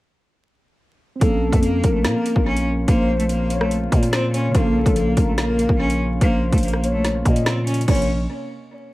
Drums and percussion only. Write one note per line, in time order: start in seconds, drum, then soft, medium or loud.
1.21 kick loud
1.21 closed hi-hat medium
1.52 kick loud
1.52 closed hi-hat medium
1.63 closed hi-hat medium
1.84 kick loud
1.84 closed hi-hat medium
2.04 snare loud
2.04 closed hi-hat medium
2.26 closed hi-hat medium
2.36 kick loud
2.57 closed hi-hat medium
2.88 kick loud
2.88 closed hi-hat medium
3.20 closed hi-hat medium
3.29 closed hi-hat medium
3.50 closed hi-hat medium
3.61 cross-stick loud
3.71 closed hi-hat medium
3.92 kick medium
3.92 closed hi-hat medium
4.03 closed hi-hat medium
4.13 snare loud
4.34 closed hi-hat medium
4.55 kick loud
4.55 closed hi-hat medium
4.86 kick loud
4.86 closed hi-hat medium
4.96 closed hi-hat medium
5.17 kick medium
5.17 closed hi-hat medium
5.38 snare loud
5.38 closed hi-hat medium
5.59 closed hi-hat medium
5.69 kick loud
5.90 closed hi-hat medium
6.21 kick loud
6.21 closed hi-hat medium
6.52 kick loud
6.52 closed hi-hat medium
6.58 closed hi-hat medium
6.63 closed hi-hat medium
6.68 closed hi-hat medium
6.73 cross-stick medium
6.84 closed hi-hat medium
7.05 snare medium
7.05 closed hi-hat medium
7.25 kick medium
7.25 closed hi-hat medium
7.36 closed hi-hat medium
7.46 snare loud
7.67 closed hi-hat medium
7.74 closed hi-hat medium
7.81 closed hi-hat medium
7.88 kick loud
7.88 closed hi-hat medium
7.88 crash medium
7.95 closed hi-hat medium
8.02 closed hi-hat soft